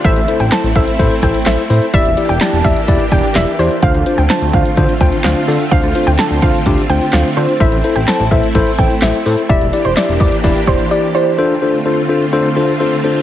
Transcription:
<<
  \new Staff \with { instrumentName = "Synth pluck" } { \time 4/4 \key d \minor \tempo 4 = 127 e''8 r16 g''16 a''8 e''16 r8. g''16 r16 e''8. r16 | e''8 r16 g''16 a''8 e''16 r8. g''16 r16 e''16 r16 c''16 r16 | f''8 r16 g''16 a''8 f''16 r8. g''16 r16 f''8. r16 | f''8 r16 g''16 a''8 f''16 r8. g''16 r16 f''16 r16 c''16 r16 |
e''8 r16 g''16 a''8 e''16 r8. g''16 r16 e''8. r16 | e''8 r16 c''16 d''8 d''16 r8. c''16 r16 d''16 r16 c''16 r16 | r1 | }
  \new Staff \with { instrumentName = "Tine electric piano" } { \time 4/4 \key d \minor <e' a' c''>8 <e' a' c''>8 <e' a' c''>8 <e' a' c''>8 <e' a' c''>8 <e' a' c''>8 <e' a' c''>8 <e' a' c''>8 | <e' g' d''>8 <e' g' d''>8 <e' g' d''>8 <e' g' d''>8 <e' g' d''>8 <e' g' d''>8 <e' g' d''>8 <e' g' d''>8 | <d' f' c''>8 <d' f' c''>8 <d' f' c''>8 <d' f' c''>8 <d' f' c''>8 <d' f' c''>8 <d' f' c''>8 <d' f' a'>8 | <d' f' c''>8 <d' f' c''>8 <d' f' a'>8 <d' f' c''>8 <d' f' g'>8 <d' f' c''>8 <d' f' c''>8 <d' f' c''>8 |
<e' a' c''>8 <e' a' c''>8 <e' a' c''>8 <e' a' c''>8 <e' a' c''>8 <e' a' c''>8 <e' a' c''>8 <e' a' c''>8 | <e' g' d''>8 <e' g' d''>8 <e' g' e''>8 <e' g' d''>8 <e' g' d''>8 <e' g' d''>8 <e' g' d''>8 <e' g' d''>8 | <d' f' a' c''>8 <d' f' a' c''>8 <d' f' a' c''>8 <d' f' a' c''>8 <d' f' a' c''>8 <d' f' a' c''>8 <d' f' a' c''>8 <d' f' a' c''>8 | }
  \new Staff \with { instrumentName = "String machine" } { \time 4/4 \key d \minor << { <a e'>1 | <e bes g'>1 | <d a f'>1~ | <d a f'>1 |
<a e'>1 | <e bes g'>1 | <d a f'>1 | } \\ { c'1 | d'1 | c'1~ | c'1~ |
c'1 | d'1 | c'1 | } >> }
  \new Staff \with { instrumentName = "Analog synth bass" } { \clef bass \time 4/4 \key d \minor a,,16 a,,16 r16 a,,16 r16 a,,16 a,,16 r16 a,,16 r16 a,,16 r16 a,,16 r16 a,16 r16 | e,,16 e,,16 r16 e,,16 r16 e,,16 e,,16 r16 e,,16 r16 e,,16 r16 e,,16 r16 e,16 r16 | d,16 d,16 r16 d,16 r16 d,16 d,16 r16 d,16 r16 d,16 r16 d,16 r16 d16 r16 | d,16 d,16 r16 d,16 r16 d,16 d,16 r16 d,16 r16 d,16 r16 d,16 r16 d16 r16 |
a,,16 a,,16 r16 a,,16 r16 a,,16 a,,16 r16 a,,16 r16 a,,16 r16 a,,16 r16 a,16 r16 | e,,16 e,,16 r16 e,,16 r16 e,,16 e,,16 r16 e,,16 r16 e,,16 r4 r16 | r1 | }
  \new DrumStaff \with { instrumentName = "Drums" } \drummode { \time 4/4 <hh bd>16 hh16 hh16 hh16 <hc hh sn>16 hh16 <hh bd>16 hh16 <hh bd>16 hh16 <hh bd>16 hh16 <hc hh sn>16 hh16 hho16 hh16 | <hh bd>16 hh16 hh16 hh16 <hc hh sn>16 hh16 <hh bd>16 hh16 <hh bd>16 hh16 <hh bd>16 hh16 <hc hh sn>16 hh16 hho16 hh16 | <hh bd>16 hh16 hh16 hh16 <hc hh sn>16 hh16 <hh bd>16 hh16 <hh bd>16 hh16 <hh bd>16 hh16 <hc hh sn>16 hh16 hho16 hh16 | <hh bd>16 hh16 hh16 hh16 <hc hh sn>16 hh16 <hh bd>16 hh16 <hh bd>16 hh16 hh16 hh16 <hc hh sn>16 hh16 hho16 hh16 |
<hh bd>16 hh16 hh16 hh16 <hc hh sn>16 hh16 <hh bd>16 hh16 <hh bd>16 hh16 <hh bd>16 hh16 <hc hh sn>16 hh16 hho16 hh16 | <hh bd>16 hh16 hh16 hh16 <hc hh sn>16 hh16 <hh bd>16 hh16 <hh bd>16 hh16 <hh bd>16 hh16 r4 | r4 r4 r4 r4 | }
>>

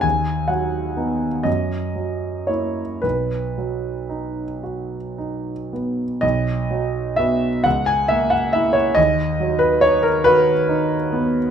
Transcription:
<<
  \new Staff \with { instrumentName = "Grand piano" } { \time 12/8 \key b \major \tempo 4. = 42 gis''8 fis''4 dis''4 cis''8 b'2~ b'8 r8 | dis''4 e''8 fis''16 gis''16 e''16 fis''16 e''16 cis''16 dis''8. b'16 cis''16 ais'16 b'4. | }
  \new Staff \with { instrumentName = "Grand piano" } { \time 12/8 \key b \major dis,8 fis8 <b dis'>8 fis,8 fis8 <ais e'>8 b,,8 fis8 dis'8 fis'8 dis'8 b8 | b,,8 fis8 <b fis'>8 cis,8 ais8 <ais e'>8 dis,8 fis8 dis'8 fis'8 dis'8 b8 | }
>>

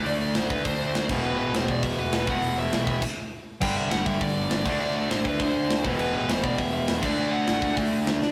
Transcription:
<<
  \new Staff \with { instrumentName = "Lead electric guitar" } { \time 4/4 \key e \minor \tempo 4 = 202 d''8 d''8 c''8 b'8 c''4. r8 | b'8 b'8 c''8 d''8 e''8 b'4 fis''8~ | fis''8 e''4. r2 | g''8 e''8 fis''8 e''8 d''2 |
d''8 d''8 c''8 b'8 c''4. r8 | b'8 b'8 c''8 d''8 e''8 e''4 d''8~ | d''8 fis''4. r2 | }
  \new Staff \with { instrumentName = "Distorted electric guitar" } { \clef bass \time 4/4 \key e \minor <d a d'>2.~ <d a d'>8 <e, b, e>8~ | <e, b, e>2.~ <e, b, e>8 <e, b, e>8~ | <e, b, e>2 r2 | <g, d g>2.~ <g, d g>8 <d a d'>8~ |
<d a d'>2.~ <d a d'>8 <e, b, e>8~ | <e, b, e>2.~ <e, b, e>8 <d a d'>8~ | <d a d'>2.~ <d a d'>8 r8 | }
  \new Staff \with { instrumentName = "Picked electric bass" } { \clef bass \time 4/4 \key e \minor d,4 a,,8 d,8 d,4 d,8 e,,8 | e,,8 a,,8 e,,8 e,,8 e,,8 e,,8 e,,8 e,,8 | e,,4 b,,8 e,,8 r2 | g,,8 c,8 g,,8 g,,8 g,,8 g,,8 g,,8 d,8 |
d,4 a,,8 d,8 d,4 d,8 e,,8 | e,,8 a,,8 e,,8 e,,8 e,,8 e,,8 e,8 d,8 | d,4 a,,8 d,8 d,4 d,8 d,8 | }
  \new DrumStaff \with { instrumentName = "Drums" } \drummode { \time 4/4 hho4 <hho sn>8 bd8 <hho bd>4 <hho sn>8 <cymc bd>8 | r4 <hho sn>8 bd8 <hho bd>4 <hho sn>8 bd8 | hho4 <hho sn>8 bd8 <cymc bd>4 r4 | <cymc bd>4 <hho sn>8 bd8 <hho bd>4 <hho sn>8 <cymc bd>8 |
r4 <hho sn>8 bd8 <hho bd>4 <hho sn>8 bd8 | cymc4 <hho sn>8 bd8 <hho bd>4 <hho sn>8 <cymc bd>8 | r4 <hho sn>8 bd8 <hho bd>4 <hho sn>8 sn8 | }
>>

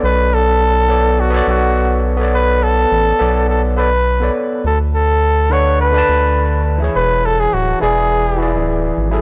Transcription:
<<
  \new Staff \with { instrumentName = "Flugelhorn" } { \time 4/4 \key b \dorian \tempo 4 = 104 b'8 a'4. fis'8 fis'4 r8 | b'8 a'4. a'8 b'4 r8 | a'8 a'4 cis''8 b'4. r8 | b'8 a'16 gis'16 fis'8 gis'4. r4 | }
  \new Staff \with { instrumentName = "Tine electric piano" } { \time 4/4 \key b \dorian <b a' cis'' d''>4. <b a' cis'' d''>8. <b a' cis'' d''>4. <b a' cis'' d''>16~ | <b a' cis'' d''>4. <b a' cis'' d''>4 <b a' cis'' d''>16 r8 <b a' cis'' d''>8. | r4. <d d' b' fis''>8. <d d' b' a''>4. <e e' gis' cis''>16~ | <e e' gis' cis''>4. <e e' gis' d''>4 <e e' gis' d''>4~ <e e' gis' d''>16 <fis e' gis' a'>16 | }
  \new Staff \with { instrumentName = "Analog synth bass" } { \clef bass \time 4/4 \key b \dorian b,,2~ b,,8 b,,4.~ | b,,4 a,,16 r16 b,,2 r8 | d,2~ d,8 d,4. | e,,4 d,,16 r16 e,,4~ e,,16 d,,8. gis,,16 r16 | }
>>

